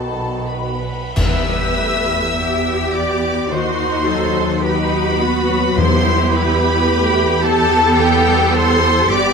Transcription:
0.00 0.91 B1 medium
0.00 0.91 B2 soft
0.00 0.77 D#3 soft
0.00 0.78 B3 soft
0.00 0.50 D#4 soft
0.00 0.77 F#4 soft
0.00 0.78 F#4 soft
0.00 0.50 A4 medium
0.00 0.50 A5 medium
0.00 0.77 B5 soft
0.49 1.17 B4 medium
0.49 1.17 B5 medium
1.17 3.48 E2 medium
1.17 2.91 E2 medium
1.17 3.57 E3 medium
1.17 1.75 B3 medium
1.17 2.33 G4 medium
1.17 2.34 B4 medium
1.17 2.92 E5 medium
1.17 2.95 E6 loud
1.17 concert bass drum medium
1.17 crash medium
1.48 3.56 G3 soft
1.79 2.38 A3 medium
1.79 3.22 E4 soft
2.08 4.61 B4 soft
2.37 3.50 B3 medium
2.37 2.93 G4 medium
2.37 3.50 G4 medium
2.37 3.53 G4 medium
2.65 3.56 E5 medium
2.94 3.56 G4 medium
2.94 3.51 D5 medium
2.94 3.52 D6 medium
3.23 3.56 E4 medium
3.51 5.74 D#2 medium
3.51 5.81 D#3 medium
3.51 4.63 D#4 medium
3.51 4.62 F#4 medium
3.51 4.07 F#4 medium
3.51 4.64 C5 medium
3.51 4.63 C6 medium
3.79 5.81 D#4 soft
4.06 5.47 F#3 medium
4.06 4.63 A4 medium
4.34 4.90 F#4 soft
4.62 5.20 D#4 medium
4.62 5.75 F#4 medium
4.62 5.20 G4 medium
4.62 5.19 B4 medium
4.62 5.75 B4 medium
4.62 5.75 B5 loud
4.91 5.81 F#4 medium
5.20 5.76 B3 medium
5.20 5.78 F#4 medium
5.20 9.10 B4 medium
5.48 5.82 F#3 medium
5.76 9.08 E2 medium
5.76 7.40 E2 loud
5.76 7.97 E3 medium
5.76 6.86 B3 medium
5.76 6.88 E4 medium
5.76 9.11 G4 medium
5.76 6.33 C5 medium
5.76 6.33 C6 loud
6.04 8.25 G3 medium
6.32 6.86 E4 medium
6.32 7.44 B4 medium
6.32 7.44 B5 loud
6.60 7.42 G4 medium
6.87 7.44 A3 medium
6.87 7.69 E4 medium
6.87 7.44 G4 medium
7.15 9.33 E5 medium
7.43 9.11 B3 medium
7.43 8.81 G4 medium
7.43 7.99 A4 medium
7.43 9.09 A4 loud
7.43 7.99 A5 loud
7.71 8.53 E4 medium
7.98 9.33 E3 medium
7.98 8.55 G4 loud
7.98 8.55 G5 loud
8.26 9.33 G3 medium
8.54 9.11 E4 medium
8.54 9.13 C5 loud
8.54 9.13 C6 loud
8.83 9.33 G4 medium
9.12 9.33 G1 medium
9.12 9.33 B3 loud
9.12 9.33 E4 medium
9.12 9.33 G4 loud
9.12 9.33 D5 loud
9.12 9.33 D6 loud

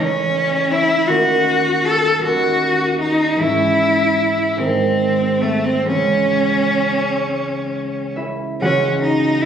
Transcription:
0.00 1.12 A1 soft
0.00 1.12 E3 soft
0.00 1.08 A3 soft
0.00 0.73 C#4 medium
0.00 1.08 C#4 soft
0.71 1.10 E4 medium
1.08 2.19 D#2 soft
1.08 2.22 D#3 soft
1.08 2.22 A3 soft
1.08 2.22 C#4 soft
1.08 1.86 F#4 medium
1.85 2.23 A4 medium
2.19 3.41 D#2 soft
2.19 3.41 D#3 soft
2.19 2.99 F#4 medium
2.25 3.41 A3 soft
2.25 3.37 C#4 soft
3.00 3.40 D#4 medium
3.36 4.56 G#2 soft
3.36 4.63 E3 soft
3.36 4.58 G#3 soft
3.36 4.60 E4 medium
3.41 4.63 C#4 soft
4.56 5.89 G#2 soft
4.56 5.89 D#3 soft
4.56 5.84 G#3 soft
4.56 5.43 C4 medium
4.61 5.89 D#4 soft
5.41 5.66 A3 medium
5.64 5.87 C4 medium
5.85 8.61 C#2 soft
5.85 8.61 E3 soft
5.85 8.62 G#3 soft
5.85 8.17 C#4 medium
5.85 8.63 C#4 soft
8.16 9.45 E4 medium
8.16 9.45 E5 medium
8.61 9.45 C#2 medium
8.61 9.45 C#3 soft
8.61 9.45 E3 soft
8.61 9.45 G#3 soft
8.61 8.98 C#4 medium
8.61 9.45 C#4 soft
8.61 9.45 F#4 medium
8.61 9.45 F#5 medium
9.02 9.43 D#4 medium
9.42 9.45 E4 medium

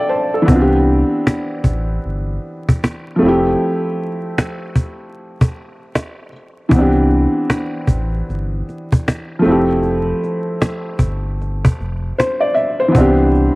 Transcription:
0.00 0.34 A4 medium
0.00 0.50 D5 medium
0.00 0.50 F5 medium
0.00 0.50 G5 medium
0.09 0.32 C5 medium
0.09 0.45 A5 medium
0.34 0.71 A4 medium
0.42 3.14 E3 medium
0.42 3.15 B3 medium
0.48 1.03 C2 loud
0.48 3.17 C4 medium
0.48 3.18 D4 medium
0.48 cajon bass loud
0.55 0.59 F4 medium
0.61 3.23 G4 medium
1.27 cajon slap loud
1.64 1.99 A1 loud
1.64 cajon bass medium
1.64 cajon slap soft
2.05 2.38 G1 loud
2.69 cajon bass loud
2.84 cajon slap medium
3.16 6.26 F3 medium
3.16 6.27 A3 medium
3.22 3.56 F1 medium
3.22 6.29 C4 medium
3.22 6.31 E4 medium
3.28 6.32 G4 medium
4.38 cajon slap loud
4.76 cajon bass medium
4.76 cajon slap soft
5.41 cajon bass loud
5.95 cajon slap medium
6.69 7.27 C2 loud
6.69 9.39 E3 medium
6.69 9.40 B3 medium
6.69 cajon bass loud
6.75 9.42 C4 medium
6.75 9.44 D4 medium
6.81 9.45 G4 medium
7.11 cajon slap soft
7.50 cajon slap loud
7.87 8.22 A1 medium
7.87 cajon bass medium
7.87 cajon slap soft
8.29 8.62 G1 loud
8.29 cajon slap soft
8.69 cajon slap soft
8.92 cajon bass medium
9.08 cajon slap loud
9.39 12.49 F3 medium
9.39 12.51 A3 medium
9.45 10.13 F1 medium
9.45 12.52 C4 medium
9.45 12.54 E4 medium
9.45 cajon slap soft
9.51 12.55 G4 medium
9.83 cajon slap soft
10.23 cajon slap soft
10.62 cajon slap loud
10.99 11.67 G1 medium
10.99 cajon bass medium
10.99 cajon slap soft
11.42 cajon slap soft
11.65 cajon bass loud
11.80 12.13 F1 medium
11.80 cajon slap soft
12.19 12.41 C5 medium
12.19 cajon slap loud
12.41 12.55 D5 medium
12.54 12.78 E5 medium
12.54 cajon slap soft
12.80 13.17 C5 medium
12.88 13.55 E3 medium
12.88 13.55 B3 medium
12.95 13.50 C2 loud
12.95 13.55 C4 medium
12.95 13.55 D4 medium
12.95 cajon bass loud
13.01 13.55 G4 medium
13.35 cajon slap soft

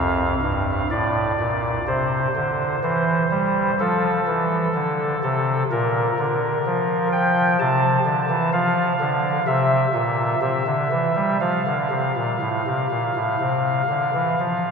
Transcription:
0.00 0.34 F2 medium
0.00 0.88 F5 loud
0.42 0.83 G2 medium
0.91 1.32 A2 medium
0.91 1.84 D5 medium
1.39 1.80 A#2 medium
1.87 2.28 C3 medium
1.87 2.80 C5 medium
2.36 2.76 D3 medium
2.83 3.23 E3 medium
2.83 3.76 C5 medium
3.31 3.71 G3 medium
3.80 4.20 F3 medium
3.80 5.19 A4 loud
4.27 4.68 E3 medium
4.74 5.15 D3 medium
5.23 5.64 C3 medium
5.23 5.64 A4 medium
5.71 6.11 A#2 medium
5.71 7.09 A#4 medium
6.19 6.58 D3 medium
6.66 7.57 F3 medium
7.12 7.52 G5 loud
7.59 7.99 C3 medium
7.59 8.50 A5 loud
8.06 8.26 D3 medium
8.30 8.49 E3 medium
8.53 8.93 F3 medium
8.53 9.44 F5 loud
9.00 9.40 D3 medium
9.47 9.87 C3 medium
9.47 10.39 E5 loud
9.94 10.35 A#2 medium
10.41 10.63 C3 medium
10.41 11.38 E5 loud
10.67 10.88 D3 medium
10.92 11.13 E3 medium
11.15 11.37 G3 medium
11.40 11.62 F3 medium
11.40 14.71 F5 medium
11.66 11.88 D3 medium
11.90 12.12 C3 medium
12.16 12.37 A#2 medium
12.41 12.62 A2 medium
12.66 12.87 C3 medium
12.91 13.12 A#2 medium
13.16 13.36 A2 medium
13.40 13.82 C3 medium
13.89 14.10 D3 medium
14.14 14.35 E3 medium
14.39 14.71 F3 medium

